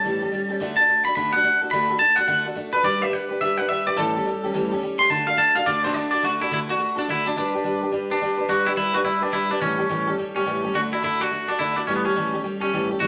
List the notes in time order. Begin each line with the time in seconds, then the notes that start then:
Already playing: A5
0.04 A2 E3 G3 C#4 G4 A4
0.20 G3 C#4 G4 A4
0.32 G3 C#4 G4 A4
0.49 G3 C#4 G4 A4
0.60 D3 A3 D4 F#4 A4
0.77 F#4 A4 A5
0.81 D4
0.88 A3 D4 F#4 A4
1.05 D4 F#4 A4 B5
1.15 D3 A3 D4 F#4 A4 B5
1.33 D4 F#4 A4 F#5
1.44 A3 D4 F#4 A4
1.61 D4 F#4 A4
1.71 D3 A3 D4 F#4 A4 B5
1.89 D4 F#4 A4
1.99 A3 D4 F#4 A4 A5
2.16 F#4 A4 F#5
2.20 D4
2.27 D3 A3 D4 F#4 A4 F#5
2.45 D4 F#4 A4
2.55 A3 D4 F#4 A4
2.73 D4 F#4 A4 B4
2.83 G3 D4 G4 B4 D5
3.01 D4 G4 B4 E5
3.12 G3 D4 G4 B4 F#5
3.29 D4 G4 B4
3.41 G3 D4 G4 B4 E5
3.58 D4 G4 B4 F#5
3.69 G3 D4 G4 B4 E5
3.86 D4 G4 B4 D5
3.97 A2 E3 G3 C#4 G4 A4
4.15 G3 C#4 G4 A4
4.26 G3 C#4 G4 A4
4.44 G3 C#4 G4 A4
4.54 A2 E3 G3 C#4 G4 A4
4.71 G3 C#4 G4 A4
4.82 G3 C#4 G4 A4
4.98 G3 C#4 G4 A4 C6
5.10 D3 A3 D4 F#4 A4 A5
5.27 D4 F#4 A4 F5
5.37 A3 D4 F#4 A4 A5
5.55 D4 F#4 A4 F5
5.66 D3 A3 D4 F#4 A4 D5
5.83 D4 F#4 A4 C5
5.94 A3 D4 F#4 A4 D5
6.11 D4 F#4 A4 D5
6.22 D3 A3 D4 F#4 A4
6.41 D4 E4 F#4 A4
6.51 D3 A3 D4 E4 F#4 A4
6.68 D4 F#4 A4
6.78 A3 D4 F#4 A4
6.96 D4 F#4 A4
7.08 D3 A3 D4 E4 F#4 A4
7.25 D4 F#4 A4
7.36 G3 D4 G4 B4
7.53 D4 G4 B4
7.64 G3 D4 G4 B4
7.81 D4 G4 B4
7.92 G3 D4 G4 B4
8.10 D4 G4 B4
8.21 G3 D4 G4 B4
8.38 D4 G4 B4
8.48 G3 D4 F#4 G4 B4
8.65 D4 E4 G4 B4
8.77 G3 D4 E4 G4 B4
8.93 D4 F#4 G4 B4
9.04 G3 D4 E4 G4 B4
9.21 D4 G4 B4
9.32 G3 D4 E4 G4 B4
9.50 D4 G4 B4
9.61 A2 E3 G3 C#4 G4 A4
9.78 G3 C#4 G4 A4
9.89 A2 E3 G3 C#4 G4 A4
10.07 G3 C#4 G4 A4
10.18 G3 C#4 G4 A4
10.35 G3 C#4 G4 A4
10.45 A2 E3 G3 C#4 G4 A4
10.63 G3 C#4 G4 A4
10.74 D3 A3 D4 F#4 A4
10.91 D4 E4 F#4 A4
11.02 D3 A3 D4 E4 F#4 A4
11.20 D4 F#4 A4
11.31 A3 D4 F#4 A4
11.48 D4 F#4 A4
11.59 D3 A3 D4 E4 F#4 A4
11.76 D4 F#4 A4
11.87 A2 E3 G3 C#4 G4 A4
11.96 B3
12.04 G3 C#4 G4 A4
12.16 A2 E3 G3 C#4 G4 A4
12.33 G3 C#4 G4 A4
12.43 G3 C#4 G4 A4
12.61 G3 C#4 G4 A4
12.73 A2 E3 G3 C#4 G4 A4
12.89 G3 C#4 G4 A4
13.00 A2 E3 G3 C#4 F#4 G4 A4